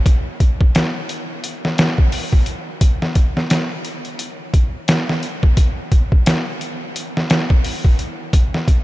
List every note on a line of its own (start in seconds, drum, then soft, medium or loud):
0.06 kick loud
0.06 closed hi-hat medium
0.40 kick medium
0.40 closed hi-hat medium
0.61 kick medium
0.75 snare loud
0.75 closed hi-hat medium
1.09 closed hi-hat medium
1.44 closed hi-hat medium
1.65 snare medium
1.78 snare loud
1.78 closed hi-hat medium
1.98 kick medium
2.12 open hi-hat medium
2.33 kick medium
2.46 closed hi-hat medium
2.81 kick loud
2.81 closed hi-hat medium
3.02 snare soft
3.15 kick medium
3.15 closed hi-hat medium
3.37 snare soft
3.50 snare loud
3.50 closed hi-hat medium
3.85 closed hi-hat medium
4.05 closed hi-hat soft
4.19 closed hi-hat medium
4.54 kick medium
4.54 closed hi-hat medium
4.88 snare loud
4.88 closed hi-hat medium
5.09 snare soft
5.23 closed hi-hat medium
5.43 kick medium
5.57 kick loud
5.57 closed hi-hat medium
5.92 kick medium
5.92 closed hi-hat medium
6.12 kick medium
6.26 snare loud
6.26 closed hi-hat medium
6.61 closed hi-hat medium
6.96 closed hi-hat medium
7.17 snare medium
7.30 snare loud
7.30 closed hi-hat medium
7.50 kick medium
7.64 open hi-hat medium
7.85 kick medium
7.99 closed hi-hat medium
8.33 kick loud
8.33 closed hi-hat medium
8.54 snare soft
8.68 kick medium
8.68 closed hi-hat medium